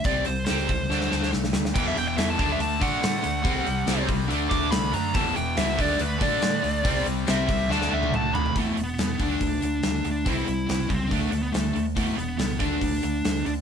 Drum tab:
CC |----------------|x---------------|----------------|----------------|
HH |o-o-o-o---------|--o-o-o-o-o-o-o-|o-o-o-o-o-o-o-o-|o-o-o-o-o-o-o-o-|
SD |----oo--oooooooo|----o-------o---|----o-------o---|----o-------o---|
T1 |----------------|----------------|----------------|----------------|
T2 |----------------|----------------|----------------|----------------|
FT |----------------|----------------|----------------|----------------|
BD |o-----o---------|o-----o---o-----|o-----o---o-----|o-----o---o-----|

CC |----------------|----------------|----------------|----------------|
HH |o-o-o-o---------|o-o-o-o-o-o-o-o-|o-o-o-o-o-o-o-o-|o-o-o-o-o-o-o-o-|
SD |----o---oo------|----o-------o---|----o-------o---|----o-------o---|
T1 |-----------o----|----------------|----------------|----------------|
T2 |------------o---|----------------|----------------|----------------|
FT |--------------oo|----------------|----------------|----------------|
BD |o-----o---------|o-----o-o-------|o-----o-o-------|o-----o-o-------|